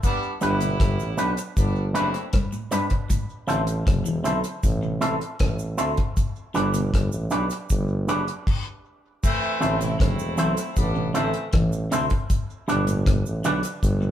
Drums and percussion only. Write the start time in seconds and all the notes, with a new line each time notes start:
0.03 kick, closed hi-hat, cabasa
0.41 closed hi-hat, cabasa
0.60 closed hi-hat, cabasa
0.80 kick, cross-stick, closed hi-hat
1.00 cabasa
1.18 closed hi-hat, cabasa
1.37 closed hi-hat, cabasa
1.57 kick, closed hi-hat, cabasa
1.95 closed hi-hat, cabasa
2.14 closed hi-hat
2.33 kick, cross-stick, closed hi-hat
2.53 cabasa
2.72 closed hi-hat, cabasa
2.90 kick, closed hi-hat
3.10 kick, closed hi-hat, cabasa
3.48 closed hi-hat, cabasa
3.67 closed hi-hat, cabasa
3.87 kick, cross-stick, closed hi-hat
4.06 cabasa
4.25 closed hi-hat, cabasa
4.44 closed hi-hat, cabasa
4.63 kick, closed hi-hat, cabasa
5.02 closed hi-hat, cabasa
5.21 closed hi-hat
5.39 kick, cross-stick, closed hi-hat
5.59 cabasa
5.78 closed hi-hat, cabasa
5.97 kick, closed hi-hat
6.17 kick, closed hi-hat, cabasa
6.55 closed hi-hat, cabasa
6.74 closed hi-hat, cabasa
6.94 kick, cross-stick, closed hi-hat
7.12 cabasa
7.30 closed hi-hat, cabasa
7.50 closed hi-hat, cabasa
7.70 kick, closed hi-hat, cabasa
8.08 closed hi-hat, cabasa
8.28 closed hi-hat
8.47 kick, crash
9.24 kick, crash, cabasa
9.62 closed hi-hat, cabasa
9.81 closed hi-hat, cabasa
10.00 kick, cross-stick, closed hi-hat
10.19 cabasa
10.38 closed hi-hat, cabasa
10.57 closed hi-hat, cabasa
10.76 kick, closed hi-hat, cabasa
11.15 closed hi-hat, cabasa
11.33 closed hi-hat
11.53 kick, cross-stick, closed hi-hat
11.72 cabasa
11.92 closed hi-hat, cabasa
12.10 kick, closed hi-hat
12.30 kick, closed hi-hat, cabasa
12.69 closed hi-hat, cabasa
12.87 closed hi-hat, cabasa
13.06 kick, cross-stick, closed hi-hat
13.26 cabasa
13.44 closed hi-hat, cabasa
13.63 closed hi-hat, cabasa
13.83 kick, closed hi-hat, cabasa